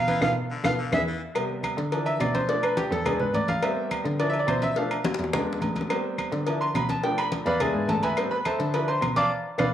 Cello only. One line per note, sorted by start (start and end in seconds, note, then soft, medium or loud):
0.00 0.20 B2 medium
0.21 0.32 B2 loud
0.64 0.75 B2 loud
0.92 1.03 E2 loud
1.77 2.17 D3 loud
2.20 2.86 B2 loud
2.91 3.18 E2 medium
3.19 3.33 G#2 medium
3.34 4.00 A2 medium
4.05 4.45 D3 loud
4.47 5.13 B2 loud
5.19 5.59 E2 medium
5.61 6.27 A2 medium
6.32 6.72 D3 medium
6.75 7.41 B2 medium
7.46 7.73 E2 loud
7.74 7.88 G#2 medium
7.88 8.54 A2 loud
8.59 8.99 D3 loud
9.02 9.28 B2 loud
9.58 9.69 B2 loud